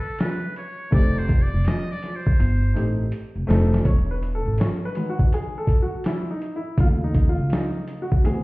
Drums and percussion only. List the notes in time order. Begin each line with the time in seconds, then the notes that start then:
0.19 snare, closed hi-hat
0.56 closed hi-hat
0.92 kick, closed hi-hat
1.29 kick, closed hi-hat
1.65 snare, closed hi-hat
2.03 snare, closed hi-hat
2.27 kick
2.40 closed hi-hat
2.76 closed hi-hat
3.12 closed hi-hat
3.50 snare, closed hi-hat
3.74 snare
3.85 kick, closed hi-hat
4.22 closed hi-hat
4.58 snare, closed hi-hat
4.95 closed hi-hat
5.19 kick
5.33 closed hi-hat
5.67 kick, closed hi-hat
6.04 snare, closed hi-hat
6.42 closed hi-hat
6.78 kick, closed hi-hat
7.14 kick, closed hi-hat
7.50 snare, closed hi-hat
7.88 closed hi-hat
8.12 kick
8.25 closed hi-hat